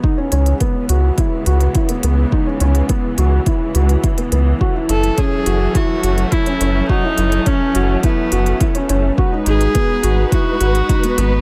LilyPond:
<<
  \new Staff \with { instrumentName = "Viola" } { \time 4/4 \key fis \dorian \tempo 4 = 105 r1 | r1 | r8 a'8 gis'4 fis'4 e'4 | dis'4 cis'4 b4. r8 |
r8 gis'4. fis'4. b8 | }
  \new Staff \with { instrumentName = "Felt piano" } { \time 4/4 \key fis \dorian dis'16 cis'16 cis'8 b8 fis'8 e'8 fis'8 e'16 b16 b8 | dis'16 cis'16 cis'8 b8 fis'8 e'8 fis'8 e'16 b16 b8 | fis'16 e'16 e'8 cis'8 fis'8 e'8 fis'8 e'16 cis'16 cis'8 | fis'16 e'16 e'8 cis'8 fis'8 e'8 fis'8 e'16 cis'16 cis'8 |
fis'16 dis'16 dis'8 b8 fis'8 e'8 fis'8 dis'16 b16 b8 | }
  \new Staff \with { instrumentName = "String section" } { \time 4/4 \key fis \dorian <cis e gis b>1~ | <cis e gis b>1 | <fis a cis'>1~ | <fis a cis'>1 |
<gis dis' fis' b'>1 | }
  \new Staff \with { instrumentName = "Analog synth bass" } { \clef bass \time 4/4 \key fis \dorian r8 cis,8 r8 cis,8 r8 cis,8 r8 cis,8 | r8 cis,8 r8 cis,8 r8 cis,8 r8 cis,8 | r8 fis,,8 r8 fis,,8 r8 fis,,8 r8 fis,,8 | r8 fis,,8 r8 fis,,8 r8 fis,,8 r8 fis,,8 |
r8 gis,,8 r8 gis,,8 r8 gis,,8 r8 gis,,8 | }
  \new DrumStaff \with { instrumentName = "Drums" } \drummode { \time 4/4 bd8 hh16 hh16 <hh bd>8 hh8 <hh bd>8 hh16 hh16 <hh bd>16 hh16 hh8 | bd8 hh16 hh16 <hh bd>8 hh8 <hh bd>8 hh16 hh16 <hh bd>16 hh16 hh8 | bd8 hh16 hh16 <hh bd>8 hh8 <hh bd>8 hh16 hh16 <hh bd>16 hh16 hh8 | bd8 hh16 hh16 <hh bd>8 hh8 <hh bd>8 hh16 hh16 <hh bd>16 hh16 hh8 |
bd8 hh16 hh16 <hh bd>8 hh8 <hh bd>8 hh16 hh16 <hh bd>16 hh16 hh8 | }
>>